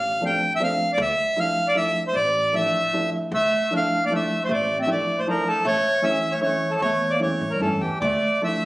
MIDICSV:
0, 0, Header, 1, 5, 480
1, 0, Start_track
1, 0, Key_signature, -1, "minor"
1, 0, Tempo, 388601
1, 1209, Time_signature, 3, 2, 24, 8
1, 7934, Tempo, 396563
1, 10630, End_track
2, 0, Start_track
2, 0, Title_t, "Accordion"
2, 0, Program_c, 0, 21
2, 0, Note_on_c, 0, 77, 98
2, 301, Note_off_c, 0, 77, 0
2, 318, Note_on_c, 0, 79, 79
2, 657, Note_off_c, 0, 79, 0
2, 685, Note_on_c, 0, 76, 98
2, 768, Note_off_c, 0, 76, 0
2, 785, Note_on_c, 0, 77, 94
2, 1130, Note_off_c, 0, 77, 0
2, 1146, Note_on_c, 0, 74, 78
2, 1239, Note_off_c, 0, 74, 0
2, 1255, Note_on_c, 0, 76, 104
2, 1721, Note_off_c, 0, 76, 0
2, 1728, Note_on_c, 0, 77, 100
2, 2075, Note_on_c, 0, 74, 98
2, 2076, Note_off_c, 0, 77, 0
2, 2180, Note_off_c, 0, 74, 0
2, 2184, Note_on_c, 0, 76, 94
2, 2513, Note_off_c, 0, 76, 0
2, 2562, Note_on_c, 0, 72, 77
2, 2656, Note_on_c, 0, 74, 107
2, 2664, Note_off_c, 0, 72, 0
2, 3149, Note_on_c, 0, 76, 88
2, 3150, Note_off_c, 0, 74, 0
2, 3829, Note_off_c, 0, 76, 0
2, 4130, Note_on_c, 0, 76, 97
2, 4618, Note_off_c, 0, 76, 0
2, 4653, Note_on_c, 0, 77, 94
2, 4998, Note_off_c, 0, 77, 0
2, 5012, Note_on_c, 0, 74, 94
2, 5104, Note_off_c, 0, 74, 0
2, 5129, Note_on_c, 0, 76, 84
2, 5474, Note_off_c, 0, 76, 0
2, 5489, Note_on_c, 0, 72, 74
2, 5582, Note_off_c, 0, 72, 0
2, 5592, Note_on_c, 0, 74, 80
2, 5909, Note_off_c, 0, 74, 0
2, 5953, Note_on_c, 0, 76, 75
2, 6052, Note_off_c, 0, 76, 0
2, 6070, Note_on_c, 0, 74, 80
2, 6411, Note_on_c, 0, 72, 76
2, 6420, Note_off_c, 0, 74, 0
2, 6519, Note_off_c, 0, 72, 0
2, 6542, Note_on_c, 0, 70, 78
2, 6768, Note_on_c, 0, 69, 79
2, 6774, Note_off_c, 0, 70, 0
2, 6995, Note_off_c, 0, 69, 0
2, 7004, Note_on_c, 0, 73, 109
2, 7459, Note_on_c, 0, 76, 94
2, 7480, Note_off_c, 0, 73, 0
2, 7802, Note_on_c, 0, 73, 86
2, 7829, Note_off_c, 0, 76, 0
2, 7908, Note_off_c, 0, 73, 0
2, 7927, Note_on_c, 0, 73, 83
2, 8278, Note_on_c, 0, 69, 71
2, 8299, Note_off_c, 0, 73, 0
2, 8403, Note_off_c, 0, 69, 0
2, 8405, Note_on_c, 0, 73, 94
2, 8752, Note_on_c, 0, 74, 74
2, 8776, Note_off_c, 0, 73, 0
2, 8878, Note_off_c, 0, 74, 0
2, 8902, Note_on_c, 0, 73, 77
2, 9245, Note_on_c, 0, 70, 75
2, 9266, Note_off_c, 0, 73, 0
2, 9366, Note_off_c, 0, 70, 0
2, 9375, Note_on_c, 0, 69, 72
2, 9609, Note_on_c, 0, 67, 59
2, 9625, Note_off_c, 0, 69, 0
2, 9829, Note_off_c, 0, 67, 0
2, 9849, Note_on_c, 0, 74, 82
2, 10347, Note_off_c, 0, 74, 0
2, 10378, Note_on_c, 0, 76, 83
2, 10630, Note_off_c, 0, 76, 0
2, 10630, End_track
3, 0, Start_track
3, 0, Title_t, "Upright piano"
3, 0, Program_c, 1, 0
3, 255, Note_on_c, 1, 53, 64
3, 268, Note_on_c, 1, 57, 60
3, 271, Note_on_c, 1, 60, 53
3, 274, Note_on_c, 1, 62, 71
3, 499, Note_off_c, 1, 53, 0
3, 505, Note_off_c, 1, 57, 0
3, 507, Note_off_c, 1, 60, 0
3, 509, Note_off_c, 1, 62, 0
3, 739, Note_on_c, 1, 53, 59
3, 744, Note_on_c, 1, 57, 65
3, 744, Note_on_c, 1, 62, 76
3, 753, Note_on_c, 1, 60, 63
3, 981, Note_off_c, 1, 53, 0
3, 983, Note_off_c, 1, 57, 0
3, 983, Note_off_c, 1, 62, 0
3, 988, Note_off_c, 1, 60, 0
3, 1682, Note_on_c, 1, 57, 52
3, 1684, Note_on_c, 1, 62, 55
3, 1687, Note_on_c, 1, 64, 78
3, 1690, Note_on_c, 1, 53, 65
3, 1927, Note_off_c, 1, 57, 0
3, 1928, Note_off_c, 1, 62, 0
3, 1930, Note_off_c, 1, 64, 0
3, 1931, Note_off_c, 1, 53, 0
3, 2160, Note_on_c, 1, 53, 65
3, 2163, Note_on_c, 1, 62, 66
3, 2166, Note_on_c, 1, 57, 65
3, 2176, Note_on_c, 1, 64, 80
3, 2408, Note_off_c, 1, 53, 0
3, 2410, Note_off_c, 1, 62, 0
3, 2411, Note_off_c, 1, 57, 0
3, 2416, Note_off_c, 1, 64, 0
3, 3122, Note_on_c, 1, 57, 57
3, 3124, Note_on_c, 1, 53, 62
3, 3125, Note_on_c, 1, 62, 58
3, 3132, Note_on_c, 1, 64, 69
3, 3377, Note_off_c, 1, 57, 0
3, 3378, Note_off_c, 1, 53, 0
3, 3378, Note_off_c, 1, 62, 0
3, 3382, Note_off_c, 1, 64, 0
3, 3623, Note_on_c, 1, 53, 62
3, 3627, Note_on_c, 1, 57, 56
3, 3627, Note_on_c, 1, 62, 61
3, 3633, Note_on_c, 1, 64, 76
3, 3871, Note_off_c, 1, 53, 0
3, 3873, Note_off_c, 1, 57, 0
3, 3874, Note_off_c, 1, 62, 0
3, 3876, Note_off_c, 1, 64, 0
3, 4580, Note_on_c, 1, 53, 64
3, 4586, Note_on_c, 1, 62, 61
3, 4590, Note_on_c, 1, 57, 65
3, 4595, Note_on_c, 1, 64, 71
3, 4834, Note_off_c, 1, 53, 0
3, 4837, Note_off_c, 1, 62, 0
3, 4839, Note_off_c, 1, 57, 0
3, 4841, Note_off_c, 1, 64, 0
3, 5068, Note_on_c, 1, 53, 63
3, 5070, Note_on_c, 1, 62, 59
3, 5075, Note_on_c, 1, 57, 64
3, 5080, Note_on_c, 1, 64, 67
3, 5317, Note_off_c, 1, 53, 0
3, 5318, Note_off_c, 1, 62, 0
3, 5321, Note_off_c, 1, 57, 0
3, 5323, Note_off_c, 1, 64, 0
3, 6006, Note_on_c, 1, 53, 55
3, 6015, Note_on_c, 1, 57, 61
3, 6022, Note_on_c, 1, 62, 57
3, 6027, Note_on_c, 1, 64, 78
3, 6262, Note_off_c, 1, 53, 0
3, 6266, Note_off_c, 1, 57, 0
3, 6270, Note_off_c, 1, 62, 0
3, 6272, Note_off_c, 1, 64, 0
3, 6507, Note_on_c, 1, 53, 65
3, 6513, Note_on_c, 1, 64, 79
3, 6520, Note_on_c, 1, 62, 66
3, 6521, Note_on_c, 1, 57, 58
3, 6750, Note_off_c, 1, 53, 0
3, 6753, Note_off_c, 1, 64, 0
3, 6757, Note_off_c, 1, 57, 0
3, 6757, Note_off_c, 1, 62, 0
3, 7437, Note_on_c, 1, 52, 74
3, 7445, Note_on_c, 1, 61, 64
3, 7449, Note_on_c, 1, 57, 65
3, 7452, Note_on_c, 1, 64, 78
3, 7690, Note_off_c, 1, 52, 0
3, 7695, Note_off_c, 1, 61, 0
3, 7696, Note_off_c, 1, 57, 0
3, 7698, Note_off_c, 1, 64, 0
3, 7910, Note_on_c, 1, 61, 53
3, 7913, Note_on_c, 1, 57, 55
3, 7914, Note_on_c, 1, 52, 75
3, 7923, Note_on_c, 1, 64, 72
3, 8165, Note_off_c, 1, 61, 0
3, 8166, Note_off_c, 1, 57, 0
3, 8167, Note_off_c, 1, 52, 0
3, 8171, Note_off_c, 1, 64, 0
3, 8864, Note_on_c, 1, 52, 71
3, 8873, Note_on_c, 1, 57, 57
3, 8876, Note_on_c, 1, 61, 56
3, 8878, Note_on_c, 1, 64, 74
3, 9119, Note_off_c, 1, 52, 0
3, 9123, Note_off_c, 1, 57, 0
3, 9125, Note_off_c, 1, 61, 0
3, 9126, Note_off_c, 1, 64, 0
3, 9358, Note_on_c, 1, 61, 53
3, 9364, Note_on_c, 1, 57, 57
3, 9368, Note_on_c, 1, 52, 67
3, 9369, Note_on_c, 1, 64, 76
3, 9609, Note_off_c, 1, 61, 0
3, 9612, Note_off_c, 1, 57, 0
3, 9614, Note_off_c, 1, 52, 0
3, 9615, Note_off_c, 1, 64, 0
3, 10344, Note_on_c, 1, 62, 61
3, 10345, Note_on_c, 1, 57, 53
3, 10348, Note_on_c, 1, 53, 64
3, 10359, Note_on_c, 1, 64, 71
3, 10585, Note_off_c, 1, 62, 0
3, 10586, Note_off_c, 1, 57, 0
3, 10587, Note_off_c, 1, 53, 0
3, 10593, Note_off_c, 1, 64, 0
3, 10630, End_track
4, 0, Start_track
4, 0, Title_t, "Clarinet"
4, 0, Program_c, 2, 71
4, 3166, Note_on_c, 2, 57, 62
4, 3838, Note_off_c, 2, 57, 0
4, 4120, Note_on_c, 2, 57, 94
4, 4565, Note_off_c, 2, 57, 0
4, 4608, Note_on_c, 2, 62, 74
4, 4940, Note_off_c, 2, 62, 0
4, 4972, Note_on_c, 2, 58, 58
4, 5074, Note_off_c, 2, 58, 0
4, 5087, Note_on_c, 2, 57, 72
4, 5418, Note_off_c, 2, 57, 0
4, 5459, Note_on_c, 2, 57, 67
4, 5547, Note_off_c, 2, 57, 0
4, 5554, Note_on_c, 2, 57, 94
4, 5889, Note_off_c, 2, 57, 0
4, 5916, Note_on_c, 2, 60, 75
4, 6018, Note_off_c, 2, 60, 0
4, 6025, Note_on_c, 2, 57, 72
4, 6362, Note_off_c, 2, 57, 0
4, 6385, Note_on_c, 2, 57, 65
4, 6495, Note_off_c, 2, 57, 0
4, 6511, Note_on_c, 2, 53, 79
4, 6735, Note_off_c, 2, 53, 0
4, 6751, Note_on_c, 2, 53, 68
4, 6964, Note_off_c, 2, 53, 0
4, 6977, Note_on_c, 2, 57, 92
4, 7419, Note_off_c, 2, 57, 0
4, 7446, Note_on_c, 2, 61, 77
4, 7786, Note_off_c, 2, 61, 0
4, 7829, Note_on_c, 2, 57, 61
4, 7932, Note_off_c, 2, 57, 0
4, 7955, Note_on_c, 2, 57, 81
4, 8278, Note_off_c, 2, 57, 0
4, 8302, Note_on_c, 2, 53, 64
4, 8404, Note_off_c, 2, 53, 0
4, 8437, Note_on_c, 2, 57, 101
4, 8757, Note_off_c, 2, 57, 0
4, 8799, Note_on_c, 2, 58, 76
4, 8891, Note_off_c, 2, 58, 0
4, 8919, Note_on_c, 2, 57, 71
4, 9239, Note_off_c, 2, 57, 0
4, 9270, Note_on_c, 2, 55, 53
4, 9368, Note_off_c, 2, 55, 0
4, 9397, Note_on_c, 2, 52, 65
4, 9612, Note_off_c, 2, 52, 0
4, 9638, Note_on_c, 2, 52, 75
4, 9845, Note_off_c, 2, 52, 0
4, 9881, Note_on_c, 2, 57, 92
4, 10316, Note_off_c, 2, 57, 0
4, 10354, Note_on_c, 2, 57, 72
4, 10630, Note_off_c, 2, 57, 0
4, 10630, End_track
5, 0, Start_track
5, 0, Title_t, "Upright bass"
5, 0, Program_c, 3, 32
5, 0, Note_on_c, 3, 33, 92
5, 412, Note_off_c, 3, 33, 0
5, 1208, Note_on_c, 3, 38, 118
5, 1368, Note_off_c, 3, 38, 0
5, 2635, Note_on_c, 3, 33, 84
5, 3271, Note_off_c, 3, 33, 0
5, 4095, Note_on_c, 3, 38, 95
5, 4261, Note_off_c, 3, 38, 0
5, 5546, Note_on_c, 3, 33, 86
5, 6167, Note_off_c, 3, 33, 0
5, 6975, Note_on_c, 3, 33, 94
5, 7135, Note_off_c, 3, 33, 0
5, 8417, Note_on_c, 3, 40, 99
5, 8882, Note_off_c, 3, 40, 0
5, 9129, Note_on_c, 3, 45, 81
5, 9339, Note_off_c, 3, 45, 0
5, 9365, Note_on_c, 3, 43, 73
5, 9588, Note_off_c, 3, 43, 0
5, 9616, Note_on_c, 3, 40, 74
5, 9826, Note_off_c, 3, 40, 0
5, 9863, Note_on_c, 3, 38, 108
5, 10020, Note_off_c, 3, 38, 0
5, 10630, End_track
0, 0, End_of_file